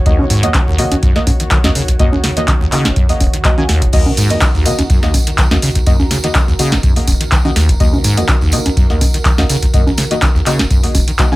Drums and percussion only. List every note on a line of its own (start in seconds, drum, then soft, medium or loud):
0.06 kick loud
0.06 closed hi-hat medium
0.19 high conga medium
0.30 open hi-hat loud
0.43 closed hi-hat medium
0.54 kick loud
0.54 clap loud
0.54 closed hi-hat medium
0.54 high conga soft
0.78 open hi-hat medium
0.92 closed hi-hat medium
0.92 high conga medium
1.03 kick loud
1.03 closed hi-hat medium
1.16 snare soft
1.27 kick medium
1.27 open hi-hat loud
1.27 high conga soft
1.40 closed hi-hat medium
1.51 kick loud
1.51 clap loud
1.51 closed hi-hat medium
1.64 snare medium
1.64 high conga medium
1.75 open hi-hat loud
1.88 kick medium
1.88 closed hi-hat medium
1.99 kick loud
1.99 closed hi-hat medium
2.12 high conga medium
2.24 snare medium
2.24 open hi-hat loud
2.37 closed hi-hat medium
2.48 kick loud
2.48 clap loud
2.48 closed hi-hat medium
2.48 high conga soft
2.72 clap medium
2.72 open hi-hat medium
2.85 snare medium
2.85 closed hi-hat medium
2.85 high conga medium
2.96 kick loud
2.96 closed hi-hat medium
3.09 open hi-hat medium
3.20 kick medium
3.20 open hi-hat loud
3.20 high conga soft
3.34 closed hi-hat medium
3.45 kick loud
3.45 clap loud
3.45 closed hi-hat medium
3.58 high conga medium
3.69 snare medium
3.69 open hi-hat loud
3.82 kick medium
3.82 closed hi-hat medium
3.93 kick loud
3.93 closed hi-hat medium
3.93 crash medium
3.93 tambourine soft
4.06 tambourine soft
4.06 high conga medium
4.17 open hi-hat loud
4.17 tambourine medium
4.29 closed hi-hat medium
4.29 tambourine soft
4.41 kick loud
4.41 clap loud
4.41 closed hi-hat medium
4.41 tambourine soft
4.41 high conga soft
4.55 tambourine soft
4.65 open hi-hat loud
4.65 tambourine loud
4.79 closed hi-hat medium
4.79 tambourine soft
4.79 high conga medium
4.90 kick loud
4.90 closed hi-hat medium
4.90 tambourine medium
5.03 snare soft
5.03 tambourine soft
5.14 kick medium
5.14 open hi-hat loud
5.14 tambourine medium
5.14 high conga soft
5.27 closed hi-hat medium
5.27 tambourine soft
5.38 kick loud
5.38 clap loud
5.38 closed hi-hat medium
5.38 tambourine medium
5.51 snare medium
5.51 tambourine soft
5.51 high conga medium
5.62 open hi-hat loud
5.62 tambourine medium
5.75 kick medium
5.75 closed hi-hat medium
5.75 tambourine soft
5.86 kick loud
5.86 closed hi-hat medium
5.86 tambourine medium
6.00 tambourine soft
6.00 high conga medium
6.11 snare medium
6.11 open hi-hat loud
6.11 tambourine medium
6.24 closed hi-hat medium
6.24 tambourine soft
6.35 kick loud
6.35 clap loud
6.35 closed hi-hat medium
6.35 tambourine medium
6.35 high conga soft
6.48 tambourine soft
6.59 open hi-hat loud
6.59 tambourine loud
6.72 snare medium
6.72 closed hi-hat medium
6.72 tambourine soft
6.72 high conga medium
6.83 kick loud
6.83 closed hi-hat medium
6.83 tambourine medium
6.96 open hi-hat medium
6.96 tambourine soft
7.07 kick medium
7.07 open hi-hat loud
7.07 tambourine medium
7.07 high conga soft
7.21 closed hi-hat medium
7.21 tambourine soft
7.32 kick loud
7.32 clap loud
7.32 closed hi-hat medium
7.32 tambourine soft
7.45 tambourine soft
7.45 high conga medium
7.56 snare medium
7.56 open hi-hat loud
7.56 tambourine medium
7.69 kick medium
7.69 closed hi-hat medium
7.69 tambourine soft
7.80 kick loud
7.80 closed hi-hat medium
7.80 tambourine medium
7.93 tambourine soft
7.93 high conga medium
8.04 open hi-hat loud
8.04 tambourine loud
8.17 closed hi-hat medium
8.17 tambourine soft
8.29 kick loud
8.29 clap loud
8.29 closed hi-hat medium
8.29 tambourine medium
8.29 high conga soft
8.41 tambourine soft
8.52 open hi-hat loud
8.52 tambourine loud
8.66 closed hi-hat medium
8.66 tambourine soft
8.66 high conga medium
8.77 kick loud
8.77 closed hi-hat medium
8.77 tambourine medium
8.90 snare soft
8.90 tambourine soft
9.01 kick medium
9.01 open hi-hat loud
9.01 tambourine loud
9.01 high conga soft
9.14 closed hi-hat medium
9.14 tambourine soft
9.25 kick loud
9.25 clap loud
9.25 closed hi-hat medium
9.25 tambourine medium
9.38 snare medium
9.38 tambourine soft
9.38 high conga medium
9.49 open hi-hat loud
9.49 tambourine loud
9.63 kick medium
9.63 closed hi-hat medium
9.74 kick loud
9.74 closed hi-hat medium
9.74 tambourine medium
9.87 tambourine soft
9.87 high conga medium
9.97 snare medium
9.97 open hi-hat loud
9.97 tambourine medium
10.11 closed hi-hat medium
10.11 tambourine soft
10.22 kick loud
10.22 clap loud
10.22 closed hi-hat medium
10.22 tambourine medium
10.22 high conga soft
10.35 tambourine soft
10.46 clap medium
10.46 open hi-hat loud
10.46 tambourine medium
10.59 snare medium
10.59 closed hi-hat medium
10.59 tambourine soft
10.59 high conga medium
10.71 kick loud
10.71 closed hi-hat soft
10.71 tambourine medium
10.83 open hi-hat medium
10.83 tambourine soft
10.95 kick medium
10.95 open hi-hat loud
10.95 tambourine medium
10.95 high conga soft
11.08 closed hi-hat medium
11.08 tambourine soft
11.19 kick loud
11.19 clap loud
11.19 closed hi-hat soft
11.19 tambourine medium
11.32 tambourine soft
11.32 high conga medium